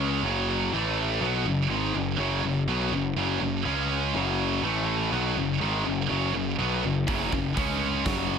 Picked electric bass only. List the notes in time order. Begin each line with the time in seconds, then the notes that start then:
Already playing: C#2
0.23 F#1
0.72 A1
1.21 B1
1.45 F#1
1.69 G#1
1.94 F#1
2.18 F#1
2.43 F#1
2.67 B1
2.92 F#1
3.16 F#1
3.41 F#1
3.65 C#2
4.14 F#1
4.63 A1
5.12 B1
5.37 F#1
5.62 G#1
5.87 F#1
6.11 F#1
6.35 F#1
6.60 B1
6.85 F#1
7.08 F#1
7.32 F#1
7.57 C#2
8.06 F#1